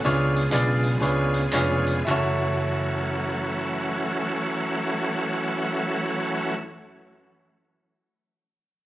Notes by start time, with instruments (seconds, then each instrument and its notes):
Already playing: tonewheel organ C#3 B3 C#4
0.04 fingered electric bass C#2, grand piano C#3 D4 F4 G#4 B4 C#5, tonewheel organ G#3 F4, tambourine
0.36 tambourine
0.51 fingered electric bass B1, grand piano D4 F4 G#4 B4 D5, clap, tambourine
0.84 tambourine
1.00 fingered electric bass C#2, grand piano D4 F4 G#4 B4 C#5, tambourine
1.34 tambourine
1.52 fingered electric bass F1, grand piano D4 F4 G#4 B4 C#5, clap, tambourine
1.87 tambourine
2.05 fingered electric bass F#1, grand piano F#2 E4 F#4, tonewheel organ E3 F#3 A3 C#4 F#4, clap
2.09 grand piano A4 C#5